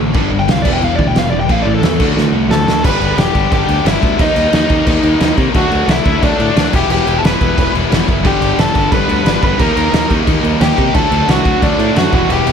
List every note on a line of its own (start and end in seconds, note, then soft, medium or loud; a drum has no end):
0.00 0.12 A1 medium
0.00 0.13 D3 medium
0.00 0.13 F#3 medium
0.00 0.13 A3 medium
0.00 0.14 A3 medium
0.00 0.14 D4 loud
0.13 0.29 G1 medium
0.13 0.63 G2 loud
0.13 0.29 G2 medium
0.13 0.63 D3 loud
0.13 0.30 D3 medium
0.13 0.30 G3 loud
0.13 0.63 G3 loud
0.13 0.64 B3 loud
0.13 0.65 D4 loud
0.13 kick loud
0.13 crash medium
0.31 0.46 G1 medium
0.31 0.46 G2 medium
0.31 0.47 D3 medium
0.39 0.51 G5 loud
0.48 0.63 C2 loud
0.48 0.63 G2 medium
0.48 0.63 D3 medium
0.48 0.62 F5 loud
0.48 snare loud
0.48 crash medium
0.62 0.80 E1 medium
0.62 0.80 E2 medium
0.62 0.80 B2 medium
0.62 1.47 E3 medium
0.62 0.81 E3 loud
0.62 1.48 G3 medium
0.62 1.48 B3 medium
0.62 0.72 D5 medium
0.62 kick loud
0.62 crash loud
0.66 1.49 E4 loud
0.73 0.84 G5 loud
0.81 0.96 E1 loud
0.81 0.97 E2 medium
0.81 0.97 B2 medium
0.81 0.94 F5 loud
0.81 crash medium
0.96 1.13 D2 medium
0.96 1.14 E2 medium
0.96 1.14 B2 medium
0.96 1.05 D5 medium
0.96 kick medium
1.07 1.18 G5 loud
1.15 1.30 E1 loud
1.15 1.31 E2 medium
1.15 1.31 B2 medium
1.15 1.30 F5 loud
1.15 snare loud
1.15 crash medium
1.30 1.47 E1 loud
1.30 1.47 E2 medium
1.30 1.48 B2 medium
1.30 1.39 D5 loud
1.40 1.51 G5 loud
1.47 1.64 A1 loud
1.47 1.98 A2 medium
1.47 1.65 A2 loud
1.47 1.97 E3 loud
1.47 1.66 E3 loud
1.47 1.98 A3 loud
1.47 1.66 A3 loud
1.47 1.99 C4 loud
1.47 2.00 E4 loud
1.47 kick loud
1.47 crash medium
1.51 1.62 F5 loud
1.62 1.80 A1 loud
1.62 1.81 A2 medium
1.62 1.81 E3 medium
1.62 1.72 D5 loud
1.74 2.06 A4 loud
1.82 1.97 E2 loud
1.82 1.98 A2 medium
1.82 1.98 E3 loud
1.82 snare loud
1.82 crash medium
1.98 2.15 D2 medium
1.98 2.82 D3 medium
1.98 2.16 D3 medium
1.98 2.83 A3 medium
1.98 2.16 A3 loud
1.98 2.83 D4 medium
1.98 2.84 F#4 loud
1.98 kick loud
1.98 crash loud
2.02 2.17 D4 loud
2.16 2.31 D2 loud
2.16 2.32 D3 medium
2.16 2.32 A3 medium
2.16 snare medium
2.32 2.48 C2 medium
2.32 2.49 D3 medium
2.32 2.49 A3 medium
2.49 2.65 D2 loud
2.49 2.66 D3 medium
2.49 2.66 A3 medium
2.49 2.82 A4 medium
2.49 2.82 A5 medium
2.49 snare loud
2.67 2.82 D2 medium
2.67 2.82 D3 medium
2.67 2.83 A3 medium
2.67 snare loud
2.82 2.95 G1 loud
2.82 3.01 G2 loud
2.82 3.01 D3 loud
2.82 3.01 G3 loud
2.82 3.00 B3 loud
2.82 2.99 D4 loud
2.82 3.16 B4 loud
2.82 3.16 B5 loud
2.82 kick loud
2.82 crash loud
2.82 crash medium
3.00 3.11 G1 medium
3.00 3.15 G2 medium
3.00 3.16 D3 medium
3.00 3.17 G3 medium
3.00 3.17 B3 medium
3.00 3.17 D4 medium
3.00 crash medium
3.16 3.28 E1 medium
3.16 3.34 G2 loud
3.16 3.34 D3 loud
3.16 3.34 G3 loud
3.16 3.33 B3 loud
3.16 3.32 D4 loud
3.16 3.49 G4 medium
3.16 3.52 G5 loud
3.16 snare loud
3.16 crash medium
3.33 3.45 G1 medium
3.33 3.48 G2 medium
3.33 3.49 D3 medium
3.33 3.50 G3 loud
3.33 3.50 B3 loud
3.33 3.51 D4 loud
3.33 kick medium
3.33 crash medium
3.50 3.62 G1 loud
3.50 3.67 G2 medium
3.50 3.67 D3 medium
3.50 3.66 G3 loud
3.50 3.66 B3 loud
3.50 3.65 D4 loud
3.50 3.84 G4 medium
3.50 3.87 G5 loud
3.50 kick loud
3.50 crash medium
3.66 3.78 D2 medium
3.66 3.82 G2 medium
3.66 3.83 D3 loud
3.66 3.84 G3 loud
3.66 3.84 B3 loud
3.66 3.84 D4 loud
3.66 crash medium
3.83 3.96 G1 loud
3.83 4.01 G2 medium
3.83 4.01 D3 medium
3.83 4.01 G3 medium
3.83 4.00 B3 loud
3.83 3.99 D4 medium
3.83 snare loud
3.83 crash loud
3.87 4.18 E4 medium
3.87 4.21 E5 loud
4.00 4.13 D2 loud
4.00 4.18 G2 medium
4.00 4.17 D3 medium
4.00 4.17 G3 medium
4.00 4.18 B3 medium
4.00 4.17 D4 loud
4.00 kick loud
4.00 crash medium
4.18 4.30 D#2 medium
4.18 4.35 D#3 loud
4.18 4.35 G3 loud
4.18 4.34 A#3 loud
4.18 4.33 D#4 loud
4.18 4.51 D#4 medium
4.18 4.54 D#5 loud
4.18 kick loud
4.18 crash medium
4.34 4.47 D#2 loud
4.34 4.49 D#3 medium
4.34 4.50 G3 medium
4.34 4.51 A#3 medium
4.34 4.51 D#4 loud
4.34 crash medium
4.51 4.64 D#2 medium
4.51 4.68 D#3 loud
4.51 4.68 G3 loud
4.51 4.67 A#3 loud
4.51 4.66 D#4 loud
4.51 5.34 D#4 medium
4.51 snare loud
4.51 crash loud
4.55 5.34 D#5 medium
4.68 4.80 D#2 loud
4.68 4.84 D#3 medium
4.68 4.84 G3 medium
4.68 4.85 A#3 loud
4.68 4.85 D#4 loud
4.68 kick loud
4.68 crash medium
4.85 4.97 D#2 loud
4.85 5.02 D#3 medium
4.85 5.02 G3 loud
4.85 5.01 A#3 loud
4.85 5.00 D#4 loud
4.85 kick loud
4.85 crash loud
5.02 5.14 D#2 medium
5.02 5.18 D#3 medium
5.02 5.18 G3 medium
5.02 5.19 A#3 loud
5.02 5.19 D#4 loud
5.02 crash medium
5.19 5.31 D#2 loud
5.19 5.36 D#3 medium
5.19 5.36 G3 loud
5.19 5.35 A#3 medium
5.19 5.35 D#4 loud
5.19 snare loud
5.19 crash medium
5.36 5.48 C3 loud
5.36 5.52 D#3 medium
5.36 5.53 G3 medium
5.36 5.53 A#3 medium
5.36 5.53 D#4 loud
5.36 kick loud
5.36 crash medium
5.53 5.65 D2 loud
5.53 5.71 D3 loud
5.53 5.71 F#3 loud
5.53 5.70 A3 loud
5.53 5.69 D4 loud
5.53 5.86 F#4 medium
5.53 5.90 F#5 loud
5.53 kick loud
5.53 crash medium
5.70 5.81 D2 medium
5.70 5.86 D3 medium
5.70 5.87 F#3 medium
5.70 5.87 A3 loud
5.70 5.88 D4 loud
5.70 crash medium
5.87 5.98 C2 loud
5.87 6.05 D3 loud
5.87 6.04 F#3 loud
5.87 6.03 A3 loud
5.87 6.03 D4 loud
5.87 6.20 E4 medium
5.87 6.24 E5 medium
5.87 snare loud
5.87 crash medium
6.04 6.16 D2 loud
6.04 6.20 D3 medium
6.04 6.20 F#3 medium
6.04 6.21 A3 loud
6.04 6.21 D4 loud
6.04 kick medium
6.04 crash medium
6.21 6.33 D2 loud
6.21 6.38 D3 medium
6.21 6.38 F#3 loud
6.21 6.37 A3 loud
6.21 6.37 D4 loud
6.21 6.70 D4 medium
6.21 6.70 D5 medium
6.21 kick loud
6.21 crash loud
6.38 6.50 A2 medium
6.38 6.54 D3 medium
6.38 6.54 F#3 loud
6.38 6.55 A3 loud
6.38 6.55 D4 loud
6.38 crash medium
6.55 6.67 D2 loud
6.55 6.71 D3 medium
6.55 6.71 F#3 loud
6.55 6.72 A3 medium
6.55 6.72 D4 loud
6.55 snare loud
6.55 crash loud
6.71 6.84 E1 medium
6.71 7.21 E2 medium
6.71 7.22 B2 loud
6.71 6.89 E3 loud
6.71 6.90 G3 loud
6.71 6.89 B3 loud
6.71 6.87 E4 loud
6.71 6.89 G4 medium
6.71 kick loud
6.71 crash loud
6.75 6.90 G5 medium
6.89 7.00 E1 loud
6.89 7.04 E3 medium
6.89 7.05 G3 loud
6.89 7.06 B3 loud
6.89 7.06 E4 loud
6.89 7.15 G4 medium
6.89 7.18 G5 loud
6.89 crash loud
7.05 7.17 E1 medium
7.05 7.23 E3 medium
7.05 7.23 G3 loud
7.05 7.23 B3 medium
7.05 7.21 E4 loud
7.05 crash medium
7.19 7.39 E4 medium
7.19 7.24 A5 medium
7.23 7.34 E1 loud
7.23 7.72 E2 medium
7.23 7.73 B2 medium
7.23 7.38 E3 medium
7.23 7.39 G3 medium
7.23 7.40 B3 medium
7.23 7.71 B4 medium
7.23 7.72 B5 medium
7.23 snare loud
7.23 crash loud
7.39 7.51 E1 loud
7.39 7.57 E3 medium
7.39 7.57 G3 loud
7.39 7.56 B3 loud
7.39 7.55 E4 loud
7.39 kick medium
7.39 crash medium
7.57 7.68 E1 loud
7.57 7.72 E3 medium
7.57 7.74 G3 medium
7.57 7.73 B3 medium
7.57 7.74 E4 loud
7.57 kick loud
7.57 crash loud
7.73 7.85 E1 medium
7.73 8.08 E2 medium
7.73 8.07 B2 medium
7.73 7.91 E3 medium
7.73 7.91 G3 loud
7.73 7.89 B3 loud
7.73 7.89 E4 loud
7.73 crash medium
7.90 8.02 E1 loud
7.90 8.05 E3 medium
7.90 8.07 G3 medium
7.90 8.06 B3 medium
7.90 8.07 E4 loud
7.90 snare loud
7.90 crash loud
8.06 8.25 F#1 loud
8.06 8.23 E3 medium
8.06 8.23 G3 loud
8.06 8.23 B3 medium
8.06 8.24 E4 loud
8.06 kick loud
8.06 crash medium
8.22 8.35 G1 loud
8.22 8.41 G2 loud
8.22 9.41 G2 medium
8.22 8.41 D3 loud
8.22 9.42 D3 loud
8.22 8.41 G3 loud
8.22 8.39 B3 loud
8.22 8.39 D4 loud
8.22 8.57 G4 medium
8.22 kick loud
8.22 crash medium
8.27 9.40 G3 loud
8.27 8.57 G5 medium
8.40 8.51 G1 medium
8.40 8.55 G2 medium
8.40 8.56 D3 medium
8.40 8.57 G3 medium
8.40 8.57 B3 medium
8.40 8.57 D4 loud
8.40 crash medium
8.56 8.68 E1 medium
8.56 8.74 G2 loud
8.56 8.74 D3 medium
8.56 8.74 G3 loud
8.56 8.73 B3 loud
8.56 8.72 D4 loud
8.56 8.90 A4 medium
8.56 8.90 A5 loud
8.56 snare loud
8.56 crash medium
8.73 8.86 G1 loud
8.73 8.89 G2 medium
8.73 8.90 D3 medium
8.73 8.90 G3 medium
8.73 8.91 B3 loud
8.73 8.91 D4 loud
8.73 kick medium
8.73 crash medium
8.90 9.02 G1 loud
8.90 9.09 G2 medium
8.90 9.08 D3 medium
8.90 9.08 G3 loud
8.90 9.07 B3 loud
8.90 9.06 D4 medium
8.90 9.40 B4 medium
8.90 9.42 B5 loud
8.90 kick loud
8.90 crash medium
9.07 9.19 D2 medium
9.07 9.23 G2 medium
9.07 9.23 D3 medium
9.07 9.24 G3 loud
9.07 9.25 B3 loud
9.07 9.25 D4 loud
9.07 crash medium
9.24 9.36 G1 loud
9.24 9.42 G2 medium
9.24 9.42 D3 medium
9.24 9.41 G3 medium
9.24 9.40 B3 loud
9.24 9.40 D4 medium
9.24 snare loud
9.24 crash medium
9.41 9.53 G1 medium
9.41 9.59 G2 medium
9.41 9.60 G2 medium
9.41 9.57 D3 medium
9.41 9.58 G3 medium
9.41 9.57 G3 medium
9.41 9.58 B3 loud
9.41 9.58 D4 medium
9.41 9.59 B4 medium
9.41 9.60 B5 medium
9.41 kick loud
9.41 crash medium
9.57 9.70 D#2 medium
9.57 9.75 D#3 loud
9.57 10.76 D#3 loud
9.57 9.75 G3 loud
9.57 9.74 A#3 loud
9.57 10.77 A#3 loud
9.57 9.73 D#4 loud
9.57 10.75 D#4 loud
9.57 9.76 A#4 medium
9.57 9.75 A#5 loud
9.57 kick loud
9.57 crash medium
9.75 9.87 D#2 medium
9.75 9.90 D#3 medium
9.75 9.91 G3 medium
9.75 9.91 A#3 medium
9.75 9.92 D#4 loud
9.75 10.08 A#4 medium
9.75 10.08 A#5 medium
9.75 crash medium
9.91 10.04 D#2 loud
9.91 10.09 D#3 loud
9.91 10.08 G3 medium
9.91 10.08 A#3 loud
9.91 10.07 D#4 loud
9.91 snare loud
9.91 crash loud
10.08 10.20 D#2 loud
10.08 10.24 D#3 medium
10.08 10.24 G3 medium
10.08 10.25 A#3 loud
10.08 10.26 D#4 loud
10.08 kick loud
10.08 crash medium
10.25 10.38 D#2 loud
10.25 10.43 D#3 medium
10.25 10.43 G3 medium
10.25 10.42 A#3 loud
10.25 10.41 D#4 loud
10.25 kick loud
10.25 crash loud
10.42 10.54 D#2 medium
10.42 10.58 D#3 loud
10.42 10.59 G3 loud
10.42 10.59 A#3 loud
10.42 10.59 D#4 loud
10.42 crash medium
10.59 10.71 D#2 loud
10.59 10.77 D#3 medium
10.59 10.76 G3 medium
10.59 10.76 A#3 medium
10.59 10.75 D#4 loud
10.59 10.93 G4 medium
10.59 10.95 G5 medium
10.59 snare loud
10.59 crash loud
10.76 10.88 C3 loud
10.76 10.93 D#3 medium
10.76 10.93 G3 medium
10.76 10.93 A#3 loud
10.76 10.94 A#3 medium
10.76 10.93 D#4 loud
10.76 10.93 D#4 medium
10.76 kick medium
10.76 crash medium
10.80 10.93 D#3 medium
10.93 11.05 D2 loud
10.93 12.11 D3 loud
10.93 11.10 D3 loud
10.93 11.10 F#3 loud
10.93 11.09 A3 loud
10.93 12.12 A3 loud
10.93 11.09 D4 loud
10.93 11.26 A4 loud
10.93 11.29 A5 loud
10.93 kick loud
10.93 crash medium
10.97 12.13 D4 loud
11.10 11.22 D2 medium
11.10 11.26 D3 medium
11.10 11.27 F#3 medium
11.10 11.27 A3 loud
11.10 11.28 D4 loud
11.10 crash medium
11.27 11.39 C2 medium
11.27 11.45 D3 medium
11.27 11.44 F#3 loud
11.27 11.44 A3 loud
11.27 11.43 D4 loud
11.27 11.60 F#4 medium
11.27 11.60 F#5 medium
11.27 snare loud
11.27 crash medium
11.44 11.56 D2 medium
11.44 11.60 D3 medium
11.44 11.61 F#3 medium
11.44 11.61 A3 medium
11.44 11.62 D4 loud
11.44 kick medium
11.44 crash medium
11.61 11.73 D2 loud
11.61 11.79 D3 medium
11.61 11.78 F#3 medium
11.61 11.78 A3 loud
11.61 11.94 D4 medium
11.61 11.77 D4 loud
11.61 11.97 D5 loud
11.61 kick loud
11.61 crash medium
11.78 11.89 A2 loud
11.78 11.94 D3 medium
11.78 11.94 F#3 medium
11.78 11.95 A3 loud
11.78 11.95 D4 loud
11.78 crash medium
11.95 12.06 F#2 medium
11.95 12.11 D3 loud
11.95 12.11 F#3 medium
11.95 12.12 A3 loud
11.95 12.12 D4 loud
11.95 12.12 F#4 medium
11.95 12.13 F#5 medium
11.95 snare loud
11.95 crash medium
12.11 12.23 E1 medium
12.11 12.52 E2 loud
12.11 12.52 B2 loud
12.11 12.29 E3 medium
12.11 12.52 E3 loud
12.11 12.29 G3 loud
12.11 12.28 B3 loud
12.11 12.27 E4 loud
12.11 12.29 F#4 medium
12.11 12.29 F#5 medium
12.11 kick loud
12.11 crash medium
12.29 12.40 E1 medium
12.29 12.44 E3 medium
12.29 12.45 G3 medium
12.29 12.45 B3 loud
12.29 12.46 E4 loud
12.29 12.52 G4 medium
12.29 12.52 G5 medium
12.29 crash medium
12.45 12.52 E1 medium
12.45 12.52 E3 medium
12.45 12.52 G3 medium
12.45 12.52 B3 medium
12.45 12.52 E4 medium
12.45 crash medium